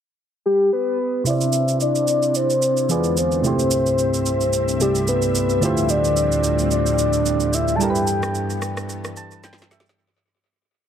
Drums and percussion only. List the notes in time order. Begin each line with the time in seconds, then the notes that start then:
1.26 shaker
1.41 shaker
1.53 shaker
1.68 shaker
1.80 shaker
1.95 shaker
2.07 shaker
2.23 shaker
2.35 shaker
2.50 shaker
2.62 shaker
2.77 shaker
2.89 shaker
3.04 shaker
3.17 shaker
3.32 shaker
3.44 shaker
3.59 shaker
3.71 shaker
3.86 shaker
3.98 shaker
4.14 shaker
4.26 shaker
4.41 shaker
4.53 shaker
4.68 shaker
4.80 shaker
4.95 shaker
5.08 shaker
5.22 shaker
5.35 shaker
5.50 shaker
5.62 shaker
5.77 shaker
5.89 shaker
6.04 shaker
6.17 shaker
6.32 shaker
6.44 shaker
6.59 shaker
6.71 shaker
6.86 shaker
6.99 shaker
7.13 shaker
7.26 shaker
7.40 shaker
7.53 shaker
7.68 shaker
7.81 shaker
7.95 shaker
8.07 shaker
8.23 cross-stick, shaker
8.35 shaker
8.50 shaker
8.62 cross-stick, shaker
8.77 cross-stick, shaker
8.89 shaker
9.04 cross-stick, shaker
9.16 shaker
9.31 shaker
9.43 snare, shaker
9.53 snare
9.58 snare, shaker
9.71 snare, shaker
9.80 snare
9.86 snare, shaker